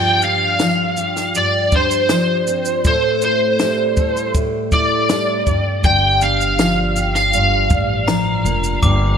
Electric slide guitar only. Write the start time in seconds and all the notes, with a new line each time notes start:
Already playing: G5
0.24 F5
1.37 D5
1.76 C5
2.87 C5
3.24 C5
4.73 D5
5.85 G5
6.23 F5
7.16 F5